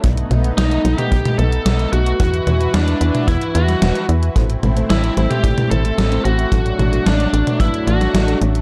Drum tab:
HH |xxxxxxxxxxxxxxxx|xxxxxxxxxxxxxxxx|xxxxxxxxxxxxxxxx|xxxxxxxxxxxxxxxx|
SD |----o-o-----o---|----o------oo---|----o-o-----o---|----o------oo---|
T2 |--o----o-o------|--o----o--------|--o----o-o------|--o----o--------|
BD |o-------o-------|o-------o-------|o-------o-------|o-------o-------|